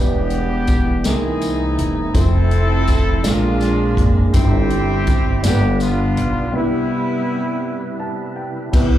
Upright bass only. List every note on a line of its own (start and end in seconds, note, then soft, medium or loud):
0.00 1.01 E1 medium
1.05 1.74 C2 medium
1.79 2.12 E1 medium
2.15 3.21 F1 medium
3.25 3.94 A#1 medium
3.97 4.31 F#1 medium
4.34 5.40 G1 loud
5.44 6.13 G1 medium
6.17 6.51 B1 medium
8.74 8.98 C2 medium